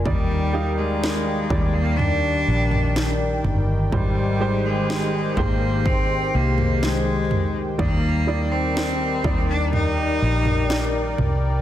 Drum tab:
SD |----o-------o---|----o-------o---|----o-------o---|
FT |o-----o-o--o--o-|o-----o-o--o--o-|o-----o-o--o--o-|
BD |o-----o---------|o-----o-o-------|o-----o---------|